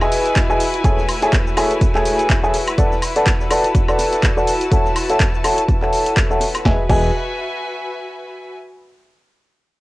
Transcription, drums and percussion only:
0.01 snare, cabasa, high woodblock
0.12 open hi-hat, cabasa
0.26 closed hi-hat, cabasa
0.36 kick, snare, clap, closed hi-hat, cabasa
0.50 cabasa
0.60 open hi-hat, cabasa
0.74 closed hi-hat, cabasa
0.84 kick, closed hi-hat, cabasa
0.99 snare, cabasa
1.08 open hi-hat, cabasa, high woodblock, shaker
1.22 closed hi-hat, cabasa
1.33 kick, snare, clap, closed hi-hat, cabasa
1.47 cabasa
1.57 snare, open hi-hat, cabasa, high woodblock
1.71 closed hi-hat, cabasa
1.81 kick, closed hi-hat, cabasa
1.95 snare, clap, cabasa
2.05 open hi-hat, cabasa
2.19 closed hi-hat, cabasa
2.30 kick, snare, clap, closed hi-hat, cabasa
2.44 cabasa
2.54 snare, open hi-hat, cabasa
2.68 closed hi-hat, cabasa, high woodblock
2.78 kick, closed hi-hat, cabasa
2.92 snare, cabasa
3.02 open hi-hat, cabasa, high woodblock
3.16 snare, closed hi-hat, cabasa
3.26 kick, snare, clap, closed hi-hat, cabasa
3.40 snare, cabasa
3.51 open hi-hat, cabasa, high woodblock
3.64 closed hi-hat, cabasa
3.75 kick, closed hi-hat, cabasa
3.89 snare, cabasa, high woodblock
3.99 snare, open hi-hat, cabasa
4.12 snare, closed hi-hat, cabasa
4.23 kick, clap, closed hi-hat, cabasa
4.37 cabasa
4.47 open hi-hat, cabasa
4.61 closed hi-hat, cabasa
4.72 kick, closed hi-hat, cabasa
4.85 snare, cabasa
4.96 open hi-hat, cabasa, high woodblock
5.10 closed hi-hat, cabasa
5.20 kick, snare, clap, closed hi-hat, cabasa
5.34 cabasa
5.44 snare, open hi-hat, cabasa, high woodblock
5.58 closed hi-hat, cabasa
5.68 kick, closed hi-hat, cabasa
5.82 snare, clap, cabasa
5.93 open hi-hat, cabasa
6.06 closed hi-hat, cabasa
6.17 kick, snare, clap, closed hi-hat, cabasa
6.31 cabasa
6.40 snare, open hi-hat, cabasa
6.55 snare, closed hi-hat, cabasa, high woodblock
6.65 kick, snare
6.89 kick, crash

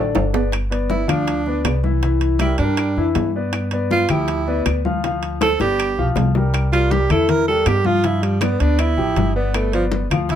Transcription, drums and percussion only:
0.15 high bongo, high conga, high timbale
0.34 low bongo, low timbale
0.52 high bongo, high conga, high timbale, claves
0.71 high bongo, high conga, high timbale
0.90 high bongo, high conga
1.09 high bongo, high conga, low conga, high timbale, claves
1.27 high bongo, high conga, high timbale
1.46 high bongo, high conga
1.65 high bongo, low bongo, high conga, high timbale, low timbale, claves
1.84 high conga
2.03 high bongo, high timbale
2.21 high bongo, high conga, high timbale
2.39 high bongo, high conga, high timbale, claves
2.58 high bongo, high timbale
2.77 high bongo, high conga, high timbale, claves
2.97 high bongo, high conga
3.15 high bongo, low bongo, high conga, high timbale, low timbale
3.53 high bongo, high conga, high timbale, claves
3.71 high bongo, high conga, high timbale
3.91 high bongo, high conga
4.09 high bongo, high conga, low conga, high timbale, claves
4.28 high bongo, high conga, high timbale
4.47 high bongo, high conga
4.66 high bongo, low bongo, high conga, high timbale, claves
4.85 high conga
5.03 high bongo, high conga, high timbale
5.23 high bongo, high conga, high timbale
5.41 high bongo, high conga, high timbale, claves
5.60 high bongo, high timbale
5.79 high conga, high timbale, claves
5.98 high conga
6.16 low bongo, high conga, high timbale, low timbale
6.35 low bongo, high conga
6.54 high bongo, high conga, high timbale, claves
6.73 high bongo, high conga, high timbale
6.91 high bongo, high conga
7.10 high bongo, high conga, low conga, high timbale, claves
7.29 high bongo, high conga, low conga, high timbale
7.47 high bongo, high conga
7.66 high bongo, low bongo, high conga, high timbale, low timbale, claves
7.85 high conga
8.04 high bongo, high timbale
8.23 high bongo, high conga, high timbale
8.41 high bongo, high conga, high timbale, claves
8.60 high bongo, high timbale
8.79 high bongo, high conga, high timbale, claves
8.98 high bongo, high conga
9.16 high bongo, low bongo, high conga, high timbale
9.54 high bongo, high conga, high timbale, claves
9.73 high bongo, high conga, high timbale
9.91 high bongo, high conga
10.11 high bongo, high conga, low conga, high timbale, claves
10.29 high bongo, high conga, low conga, high timbale

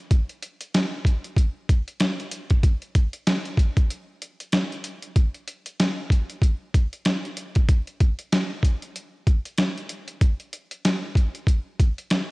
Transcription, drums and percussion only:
0.11 kick, closed hi-hat
0.29 closed hi-hat
0.42 closed hi-hat
0.61 closed hi-hat
0.74 snare, closed hi-hat
1.05 kick, closed hi-hat
1.24 closed hi-hat
1.36 kick, closed hi-hat
1.69 kick, closed hi-hat
1.88 closed hi-hat
2.00 snare, closed hi-hat
2.20 closed hi-hat
2.32 closed hi-hat
2.50 kick, closed hi-hat
2.63 kick, closed hi-hat
2.82 closed hi-hat
2.95 kick, closed hi-hat
3.13 closed hi-hat
3.27 snare, closed hi-hat
3.46 closed hi-hat
3.57 kick, closed hi-hat
3.77 kick, closed hi-hat
3.90 closed hi-hat
4.22 closed hi-hat
4.40 closed hi-hat
4.52 snare, closed hi-hat
4.72 closed hi-hat
4.84 closed hi-hat
5.02 closed hi-hat
5.16 kick, closed hi-hat
5.35 closed hi-hat
5.48 closed hi-hat
5.66 closed hi-hat
5.80 snare, closed hi-hat
6.10 kick, closed hi-hat
6.30 closed hi-hat
6.42 kick, closed hi-hat
6.74 kick, closed hi-hat
6.93 closed hi-hat
7.05 snare, closed hi-hat
7.25 closed hi-hat
7.37 closed hi-hat
7.55 kick, closed hi-hat
7.69 kick, closed hi-hat
7.87 closed hi-hat
8.00 kick, closed hi-hat
8.19 closed hi-hat
8.32 snare, closed hi-hat
8.63 kick, closed hi-hat
8.82 closed hi-hat
8.96 closed hi-hat
9.27 kick, closed hi-hat
9.45 closed hi-hat
9.58 snare, closed hi-hat
9.78 closed hi-hat
9.89 closed hi-hat
10.08 closed hi-hat
10.21 kick, closed hi-hat
10.40 closed hi-hat
10.53 closed hi-hat
10.71 closed hi-hat
10.85 snare, closed hi-hat
11.15 kick, closed hi-hat
11.35 closed hi-hat
11.47 kick, closed hi-hat
11.80 kick, closed hi-hat
11.98 closed hi-hat
12.10 snare, closed hi-hat

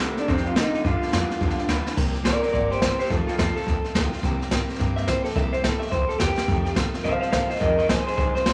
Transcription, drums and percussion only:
0.17 snare
0.28 kick, snare
0.37 snare
0.46 snare
0.56 snare, hi-hat pedal
0.74 snare
0.85 kick, snare
1.02 snare
1.08 snare
1.13 snare, hi-hat pedal
1.30 snare
1.40 kick, snare
1.50 snare
1.58 snare
1.69 snare, hi-hat pedal
1.87 snare
1.97 kick, snare, crash
2.15 snare
2.25 kick, snare, hi-hat pedal
2.43 snare
2.48 snare
2.54 kick, snare
2.72 snare
2.82 kick, snare, hi-hat pedal
3.00 snare
3.05 snare
3.10 kick, snare
3.28 snare
3.39 kick, snare, hi-hat pedal
3.57 snare
3.62 snare
3.67 kick, snare
3.84 snare
3.95 kick, snare, hi-hat pedal
4.13 snare
4.18 snare
4.23 kick, snare
4.41 snare
4.51 kick, snare, hi-hat pedal
4.69 snare
4.74 snare
4.79 kick, snare
4.97 snare
5.08 kick, snare, hi-hat pedal
5.25 snare
5.30 snare
5.36 kick, snare
5.53 snare
5.64 kick, snare, hi-hat pedal
5.82 snare
5.87 snare
5.91 kick, snare
6.10 snare
6.20 kick, snare, hi-hat pedal
6.38 snare
6.48 kick, snare
6.66 snare
6.76 kick, snare, hi-hat pedal
6.94 snare
6.99 snare
7.05 kick, snare
7.22 snare
7.33 kick, snare, hi-hat pedal
7.50 snare
7.56 snare
7.61 kick, snare
7.79 snare
7.89 kick, snare, hi-hat pedal
8.07 snare
8.13 snare
8.18 kick, snare
8.36 snare
8.46 kick, snare, hi-hat pedal

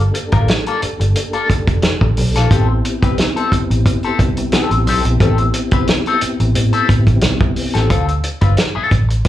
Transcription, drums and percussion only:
0.14 closed hi-hat
0.32 kick, closed hi-hat
0.48 snare, closed hi-hat
0.66 closed hi-hat
0.82 closed hi-hat
1.01 closed hi-hat
1.15 closed hi-hat
1.33 closed hi-hat
1.50 kick, closed hi-hat
1.67 kick, closed hi-hat
1.82 snare, closed hi-hat
2.01 kick
2.17 open hi-hat
2.35 snare, closed hi-hat
2.51 kick, closed hi-hat
2.85 closed hi-hat
3.02 kick, closed hi-hat
3.18 snare, closed hi-hat
3.37 closed hi-hat
3.52 kick, closed hi-hat
3.71 closed hi-hat
3.86 kick, closed hi-hat
4.03 closed hi-hat
4.19 kick, closed hi-hat
4.37 closed hi-hat
4.52 snare, closed hi-hat
4.71 closed hi-hat
4.87 open hi-hat
5.05 closed hi-hat
5.20 kick, closed hi-hat
5.38 closed hi-hat
5.54 closed hi-hat
5.71 kick, closed hi-hat
5.87 snare, closed hi-hat
6.06 closed hi-hat
6.21 closed hi-hat
6.40 closed hi-hat
6.55 closed hi-hat
6.73 closed hi-hat
6.89 kick, closed hi-hat
7.06 kick, closed hi-hat
7.21 snare, closed hi-hat
7.41 kick
7.56 open hi-hat
7.75 snare, closed hi-hat
7.90 kick, closed hi-hat
8.08 closed hi-hat
8.23 closed hi-hat
8.41 kick, closed hi-hat
8.57 snare, closed hi-hat
8.91 kick, closed hi-hat
9.10 closed hi-hat
9.25 kick, closed hi-hat

